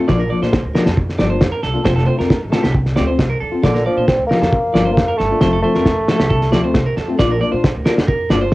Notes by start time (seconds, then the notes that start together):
0.07 A#1 F3 A#3 D4 F4 D5, kick, snare
0.19 A#4
0.30 F3 A#3 D4 F4 D5
0.42 A#2 A#3 D4 F4 C5, snare
0.53 kick, snare
0.65 D2
0.74 F3 A#3 D4 F4 A#4, snare
0.85 F2 A4, snare
0.97 muted clean electric guitar stroke, kick
1.09 snare
1.18 G1 F3 A#3 D4 D5, snare
1.30 A#3 D4 F4 C5
1.41 F2, kick, snare
1.52 A#4
1.63 C2 A4, snare
1.74 A#3 D4 F4
1.84 F1 C4 F4 C5, muted steel-string acoustic guitar stroke, kick, snare
1.96 A4, snare
2.06 A3 C4 F4 C5
2.18 F2 C4 F4 A#4, snare
2.30 kick, snare
2.43 A1
2.50 A3 C4 F4 A4, snare
2.63 C2 G4, snare
2.73 muted clean electric guitar stroke, kick
2.86 snare
2.95 D2 A3 C4 F4 D5, snare
3.07 C4 F4 C5
3.19 C2, kick, snare
3.30 A#4
3.40 F2 A4
3.52 C4 F4
3.62 A#1 D3 F3 A#3 D4 F4 D5, kick, snare
3.74 A#4, snare
3.86 F3 A#3 D4 F4 D5
3.97 A#2 A#3 D4 F4 C5
4.07 C4, kick, snare
4.18 D2
4.27 F3 A#3 A#4
4.31 D4 F4, snare
4.42 F2 A4, snare
4.52 muted clean electric guitar stroke, kick
4.73 G1 F3 A#3 D4 F4 D5, snare
4.85 A#3 D4 F4 C5
4.93 A#3
4.97 F2, kick, snare
5.08 A#4
5.17 G1 A3 A4, snare
5.31 A#3 D4 F4
5.41 F1 F3 C4 F4 C5, muted steel-string acoustic guitar stroke, kick, snare
5.53 A4
5.62 F3 A3 C4 F4 C5
5.75 F2 A3 C4 F4 A#4, snare
5.86 kick, snare
5.98 A1
6.08 F3 A3 C4 F4 A4, snare
6.20 C2 G4, snare
6.30 A4, kick
6.42 snare
6.51 D2 F3 A3 C4 F4 D5, snare
6.63 A3 C4 F4 C5
6.75 C2, kick, snare
6.86 A#4
6.97 F2 A4, snare
7.08 A3 C4 F4
7.18 A#1 A#3 D4 F4 D5, kick, snare
7.31 A#4
7.41 A#3 D4 F4 D5
7.51 A#2 D4 F4 C5
7.64 kick, snare
7.75 D2
7.84 A#3 D4 F4 A#4, snare
7.97 F2, muted clean electric guitar stroke, snare
8.07 A#4, kick
8.30 G1 A#3 D4 F4 D5, snare
8.41 F4 C5